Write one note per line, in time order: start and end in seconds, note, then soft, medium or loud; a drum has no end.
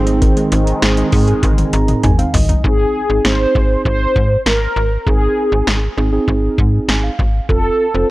0.00 0.34 G#1 loud
0.00 2.61 D#3 medium
0.00 2.61 G#3 medium
0.00 0.64 C4 medium
0.00 2.60 C4 medium
0.00 0.64 D#4 medium
0.00 0.64 G#4 loud
0.07 0.19 D#4 medium
0.07 closed hi-hat medium
0.22 0.34 D#3 medium
0.22 kick loud
0.22 closed hi-hat medium
0.37 0.49 G#3 medium
0.37 closed hi-hat medium
0.52 0.73 G#1 loud
0.52 0.64 D#3 medium
0.52 closed hi-hat medium
0.67 closed hi-hat medium
0.82 1.04 G#1 loud
0.82 0.95 D#3 medium
0.82 1.06 C4 medium
0.82 1.06 D#4 medium
0.82 1.06 G#4 loud
0.82 snare loud
0.82 closed hi-hat medium
0.97 1.10 D#4 medium
0.97 closed hi-hat medium
1.12 1.34 G#2 loud
1.12 2.09 C4 medium
1.12 2.09 D#4 medium
1.12 2.09 G#4 loud
1.12 kick loud
1.12 open hi-hat medium
1.28 1.40 G#4 medium
1.28 closed hi-hat soft
1.43 1.64 G#1 loud
1.43 1.55 D#3 medium
1.43 kick medium
1.43 closed hi-hat medium
1.43 high tom medium
1.58 closed hi-hat medium
1.58 high tom medium
1.73 1.95 G#1 loud
1.73 1.85 D#3 medium
1.73 2.02 A#5 medium
1.73 closed hi-hat medium
1.88 2.01 G#3 medium
1.88 closed hi-hat soft
1.88 mid tom medium
2.03 2.25 G#1 medium
2.03 2.16 D#3 medium
2.03 2.18 G#5 medium
2.03 closed hi-hat medium
2.03 mid tom medium
2.19 2.31 C4 medium
2.19 2.33 F5 medium
2.19 closed hi-hat medium
2.34 2.55 G#1 loud
2.34 2.46 D#3 medium
2.34 2.62 D#5 medium
2.34 floor tom loud
2.34 open hi-hat medium
2.49 2.61 D#4 medium
2.49 closed hi-hat medium
2.49 floor tom medium
2.64 2.85 G#1 loud
2.64 3.00 C4 medium
2.64 3.00 D#4 medium
2.64 3.27 G#4 loud
2.64 3.00 G#4 medium
2.64 kick loud
3.10 3.20 G#1 medium
3.10 3.22 C4 medium
3.10 3.22 D#4 medium
3.10 3.22 G#4 medium
3.25 3.46 G#1 loud
3.25 4.21 C4 medium
3.25 4.21 D#4 medium
3.25 4.21 G#4 medium
3.25 3.81 C5 loud
3.25 snare loud
3.55 3.76 G#1 loud
3.55 kick loud
3.85 4.07 G#1 loud
3.85 4.42 C5 loud
3.85 kick medium
4.16 4.37 G#2 loud
4.16 kick medium
4.46 4.67 G#1 medium
4.46 5.08 A#4 loud
4.46 snare loud
4.76 4.98 G#1 loud
5.07 5.28 G#1 loud
5.07 5.79 C4 medium
5.07 5.79 D#4 medium
5.07 5.94 G#4 medium
5.07 5.79 G#4 medium
5.07 kick loud
5.52 5.63 G#1 medium
5.67 5.88 G#1 loud
5.67 snare loud
5.98 6.19 G#1 loud
5.98 6.10 C4 medium
5.98 6.10 D#4 medium
5.98 6.10 G#4 loud
6.13 7.09 C4 medium
6.13 7.09 D#4 medium
6.13 7.09 G#4 medium
6.28 6.49 G#1 loud
6.28 kick medium
6.58 6.79 G#2 loud
6.58 kick medium
6.88 7.10 G#1 loud
6.88 7.03 G#5 medium
6.88 snare loud
7.04 7.46 F5 medium
7.19 7.40 G#1 loud
7.19 kick medium
7.49 7.70 F1 loud
7.49 7.85 C4 medium
7.49 7.85 F4 medium
7.49 8.10 A4 medium
7.49 7.85 A4 medium
7.49 kick loud
7.94 8.05 F1 medium
7.94 8.07 C4 medium
7.94 8.07 F4 medium
7.94 8.07 C5 medium